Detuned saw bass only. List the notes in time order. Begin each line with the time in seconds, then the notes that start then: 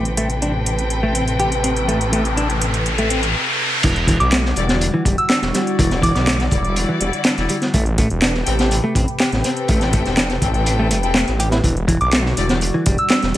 Already playing: A1
3.84 E1
4.20 B1
4.57 E1
5.05 E1
5.43 E1
5.79 E1
6.16 B1
6.52 E1
7.01 E1
7.38 E1
7.74 A1
8.11 E1
8.47 A1
8.95 A1
9.33 A1
9.69 A1
10.06 E1
10.42 A1
10.91 E1
11.28 A1
11.64 E1
12.02 B1
12.38 E1
12.87 E1
13.23 E1